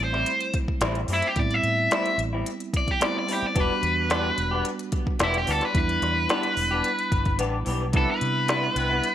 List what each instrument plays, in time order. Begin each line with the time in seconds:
Already playing: tine electric piano G3 A3 C4 E4
0.00 fingered electric bass A1, overdriven electric guitar C5
0.13 clean electric guitar G3 C4 E4, snare
0.26 closed hi-hat
0.41 closed hi-hat
0.54 kick, closed hi-hat
0.68 kick
0.81 fingered electric bass A1, clean electric guitar A2 G3 C4 E4, snare, closed hi-hat
0.95 closed hi-hat
1.08 fingered electric bass F#2, clean electric guitar A2 G3 C4 E4, open hi-hat
1.13 overdriven electric guitar E4
1.22 closed hi-hat
1.27 overdriven electric guitar G4
1.36 fingered electric bass A2, tine electric piano G3 B3 C4 E4, overdriven electric guitar D5, kick, closed hi-hat
1.51 overdriven electric guitar E5, closed hi-hat
1.63 fingered electric bass A2, closed hi-hat
1.91 clean electric guitar A2 G3 C4 E4, overdriven electric guitar E5, snare, closed hi-hat
2.06 closed hi-hat
2.18 fingered electric bass A1, closed hi-hat
2.33 clean electric guitar G3 C4 E4
2.46 closed hi-hat
2.60 closed hi-hat
2.74 overdriven electric guitar D5, kick, closed hi-hat
2.88 overdriven electric guitar G4, kick, closed hi-hat
3.00 clean electric guitar A2 G3 C4 E4, tine electric piano G3 B3 C4 E4, snare, closed hi-hat
3.04 overdriven electric guitar D5
3.19 overdriven electric guitar D5
3.27 clean electric guitar A2 G3 C4 E4, open hi-hat
3.33 overdriven electric guitar G4
3.42 muted fingered electric bass stroke
3.47 overdriven electric guitar D5
3.55 fingered electric bass E1, clean electric guitar E3 B3 D4 G4, tine electric piano G3 B3 D4 F#4, kick, closed hi-hat
3.60 overdriven electric guitar B4
3.83 fingered electric bass E2, closed hi-hat
4.10 clean electric guitar E3 B3 D4 G4, snare, closed hi-hat
4.38 fingered electric bass E1, closed hi-hat
4.51 clean electric guitar B3 D4 G4
4.65 closed hi-hat
4.79 closed hi-hat
4.92 kick, closed hi-hat
5.07 kick
5.19 fingered electric bass E1, clean electric guitar E3 B3 D4 G4, snare, closed hi-hat
5.24 overdriven electric guitar E4
5.34 overdriven electric guitar G4, closed hi-hat
5.46 fingered electric bass D2, clean electric guitar E3 B3 D4 G4, open hi-hat
5.50 overdriven electric guitar A4
5.61 overdriven electric guitar B4, snare, closed hi-hat
5.74 fingered electric bass E2, tine electric piano G3 B3 D4 E4, kick, closed hi-hat
5.78 overdriven electric guitar B4
5.89 closed hi-hat
6.02 fingered electric bass E2, snare, closed hi-hat
6.29 clean electric guitar E3 B3 D4 G4, snare, closed hi-hat
6.43 closed hi-hat
6.57 fingered electric bass E1, open hi-hat
6.71 clean electric guitar B3 D4 G4
6.84 closed hi-hat
6.99 closed hi-hat
7.12 fingered electric bass G1, kick, closed hi-hat
7.25 kick, closed hi-hat
7.39 fingered electric bass A1, clean electric guitar E3 B3 D4 G4, closed hi-hat
7.65 fingered electric bass B1, clean electric guitar E3 B3 D4 G4, open hi-hat
7.93 fingered electric bass C2, clean electric guitar C3 G3 B3 E4, tine electric piano G3 B3 D4 E4, horn section B3 E4 B4, kick, closed hi-hat
7.97 overdriven electric guitar A4
8.11 overdriven electric guitar B4
8.21 fingered electric bass C3, closed hi-hat
8.48 clean electric guitar C3 G3 B3 E4, snare, closed hi-hat
8.75 fingered electric bass C2, horn section B3 C4 E4 B4, closed hi-hat
8.90 clean electric guitar G3 B3 E4
9.04 closed hi-hat